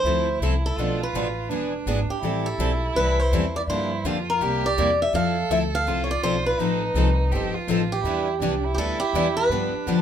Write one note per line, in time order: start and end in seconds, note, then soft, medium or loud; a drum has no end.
0.00 0.39 D2 medium
0.00 0.38 C5 loud
0.05 0.27 F3 medium
0.05 0.27 C4 medium
0.05 0.78 E4 medium
0.05 0.27 E4 medium
0.05 0.27 A4 medium
0.40 0.76 C2 medium
0.40 0.53 F3 medium
0.40 0.53 C4 medium
0.40 0.53 E4 medium
0.40 0.53 A4 loud
0.66 1.02 A4 medium
0.76 1.12 B1 medium
0.76 1.00 B2 medium
0.76 1.00 F3 medium
0.76 1.00 A3 medium
0.76 1.00 D4 medium
0.76 1.51 F4 medium
0.76 1.00 A4 medium
0.76 1.00 B4 medium
1.03 1.71 B4 medium
1.13 1.49 A1 medium
1.13 1.26 B2 medium
1.13 1.26 F3 medium
1.13 1.26 A3 medium
1.13 1.26 D4 medium
1.13 1.26 A4 medium
1.13 1.27 B4 medium
1.49 1.85 E1 medium
1.49 1.72 E3 medium
1.49 1.72 B3 medium
1.49 2.22 D4 medium
1.49 1.72 D4 medium
1.49 1.72 G#4 medium
1.49 1.72 B4 medium
1.86 2.08 G#1 medium
1.86 1.99 E3 medium
1.86 1.99 B3 medium
1.86 1.99 D4 medium
1.86 1.99 G#4 medium
1.86 1.99 B4 loud
2.09 2.47 G4 medium
2.09 muted upright bass stroke soft
2.22 2.58 A1 medium
2.22 2.45 E3 medium
2.22 2.45 G3 medium
2.22 2.46 C4 medium
2.22 3.64 E4 loud
2.22 2.45 E4 medium
2.22 2.46 A4 medium
2.46 2.92 A4 medium
2.58 2.94 B1 medium
2.58 2.71 E3 medium
2.58 2.71 G3 medium
2.58 2.72 C4 medium
2.58 2.71 E4 medium
2.58 2.71 A4 medium
2.95 3.31 C2 medium
2.95 3.18 E3 medium
2.95 3.18 G3 medium
2.95 3.18 C4 medium
2.95 3.18 E4 medium
2.95 3.18 A4 medium
2.95 3.20 B4 medium
3.20 3.56 C5 medium
3.32 3.67 E2 medium
3.32 3.44 E3 medium
3.32 3.44 G3 medium
3.32 3.44 C4 medium
3.32 3.44 E4 medium
3.32 3.44 A4 loud
3.56 3.61 D5 medium
3.67 4.03 G2 medium
3.67 3.90 D3 medium
3.67 3.91 F3 medium
3.67 3.91 A#3 medium
3.67 3.91 D4 medium
3.67 4.07 E4 medium
3.67 3.91 G4 medium
3.67 4.06 C5 medium
4.04 4.40 F2 medium
4.04 4.17 D3 medium
4.04 4.16 F3 medium
4.04 4.17 A#3 medium
4.04 4.17 D4 medium
4.04 4.43 F4 medium
4.04 4.17 G4 medium
4.30 4.66 A#4 medium
4.41 4.76 C2 medium
4.41 4.63 C3 medium
4.41 4.63 G3 medium
4.41 4.63 A#3 medium
4.41 4.63 E4 medium
4.41 5.01 G4 loud
4.41 4.64 G4 medium
4.66 4.99 D5 loud
4.78 5.13 E2 medium
4.78 4.89 C3 medium
4.78 4.89 G3 medium
4.78 4.89 A#3 medium
4.78 4.90 E4 medium
4.78 4.90 G4 medium
5.02 5.14 E5 medium
5.13 5.49 F2 medium
5.13 5.36 F3 medium
5.13 5.36 C4 medium
5.13 5.37 E4 medium
5.13 5.89 A4 loud
5.13 5.37 A4 medium
5.13 5.51 F5 loud
5.50 5.85 D2 medium
5.50 5.62 F3 medium
5.50 5.62 C4 medium
5.50 5.63 E4 medium
5.50 5.62 A4 medium
5.50 5.57 E5 medium
5.75 6.03 F5 loud
5.86 6.22 C2 medium
5.86 6.09 F3 medium
5.86 6.09 C4 medium
5.86 6.09 E4 medium
5.86 6.61 F4 medium
5.86 6.09 A4 medium
6.04 6.10 C#5 medium
6.11 6.23 D5 loud
6.22 6.58 B1 medium
6.22 6.35 F3 medium
6.22 6.35 C4 medium
6.22 6.35 E4 medium
6.22 6.35 A4 loud
6.22 6.46 C5 medium
6.46 7.15 B4 medium
6.58 6.94 A1 medium
6.58 6.81 F3 medium
6.58 6.82 C4 medium
6.58 7.34 D#4 medium
6.58 6.82 D#4 medium
6.58 6.82 A4 medium
6.94 7.30 C2 medium
6.94 7.08 F3 medium
6.94 7.08 C4 medium
6.94 7.08 D#4 medium
6.94 7.08 A4 medium
7.31 7.53 G1 medium
7.31 7.55 F3 medium
7.31 7.55 C4 medium
7.31 7.55 G4 medium
7.36 7.56 D#4 medium
7.36 7.55 A4 medium
7.54 8.04 F4 loud
7.54 muted upright bass stroke soft
7.67 8.03 A1 medium
7.67 7.81 F3 medium
7.67 7.81 C4 medium
7.67 7.81 D#4 medium
7.67 7.81 A4 loud
7.92 8.71 G4 medium
8.03 8.40 E2 medium
8.03 8.27 E3 medium
8.03 8.27 G3 medium
8.03 8.27 B3 medium
8.03 8.27 D4 medium
8.03 8.38 E4 medium
8.03 8.27 E4 medium
8.03 8.27 G4 medium
8.03 8.28 B4 medium
8.40 8.76 C2 medium
8.40 8.53 E3 medium
8.40 8.53 G3 medium
8.40 8.53 B3 medium
8.40 8.66 D4 medium
8.40 8.53 D4 medium
8.40 8.53 E4 loud
8.40 8.54 G4 medium
8.40 8.53 B4 medium
8.65 9.52 E4 loud
8.74 8.98 D2 medium
8.74 9.00 E3 medium
8.74 9.00 B3 medium
8.74 8.78 G4 medium
8.74 8.99 A4 loud
8.79 9.00 G3 medium
8.79 9.00 D4 medium
8.79 9.00 E4 medium
8.79 9.00 G4 medium
8.79 9.00 B4 medium
9.00 9.34 G4 medium
9.00 muted upright bass stroke soft
9.13 9.48 E2 medium
9.13 9.26 E3 medium
9.13 9.26 G3 medium
9.13 9.26 B3 medium
9.13 9.26 D4 loud
9.13 9.26 E4 loud
9.13 9.26 G4 loud
9.13 9.26 B4 medium
9.37 10.02 B4 loud
9.49 9.71 G2 medium
9.49 9.73 D3 medium
9.49 9.73 F3 medium
9.49 9.73 B3 medium
9.49 10.02 D4 loud
9.49 9.73 D4 medium
9.49 9.73 G4 medium
9.73 muted upright bass stroke soft
9.87 10.02 F2 medium
9.87 9.98 D3 medium
9.87 9.98 F3 medium
9.87 9.98 B3 medium
9.87 9.99 D4 medium
9.87 9.99 G4 medium